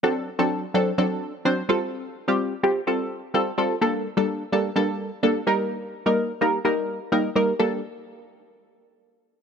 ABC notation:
X:1
M:4/4
L:1/16
Q:1/4=127
K:Gm
V:1 name="Synth stab"
[^F,CDA]2 z [F,CDA]2 z [F,CDA] z [F,CDA]3 z [F,CDc] z [G,C=FA]2- | [G,CFA]2 z [G,CFG]2 z [G,CFG] z [G,CFA]3 z [G,CFA] z [G,CFA] z | [G,B,DA]2 z [G,B,DA]2 z [G,B,DA] z [G,B,DA]3 z [G,B,DA] z [G,B,EB]2- | [G,B,EB]2 z [G,B,EB]2 z [G,B,EB] z [G,B,EB]3 z [G,B,EB] z [G,B,EB] z |
[G,B,DA]2 z12 z2 |]